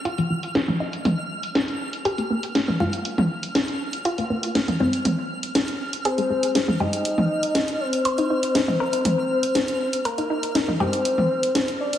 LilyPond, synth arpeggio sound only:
\new Staff \with { instrumentName = "Synth arpeggio sound" } { \time 4/4 \key aes \lydian \tempo 4 = 120 << { f'8 r4 ees'2~ ees'8 | g'8 r4 f'2~ f'8 | f'8 r4 c'2~ c'8 | aes'8 r4 g'2~ g'8 |
c''8 r4 bes'2~ bes'8 | bes'8 r4 g'2~ g'8 | } \\ { r16 f16 f16 r16 f16 f16 r2 r8 | r16 bes16 bes16 r16 bes16 bes16 r2 r8 | r16 bes16 bes16 r16 bes16 bes16 r2 r8 | r16 aes16 aes16 r16 aes16 aes16 r2 r8 |
r16 ees'16 ees'16 r16 ees'16 ees'16 r2 r8 | r16 ees'16 ees'16 r16 ees'16 ees'16 r2 r8 | } >> }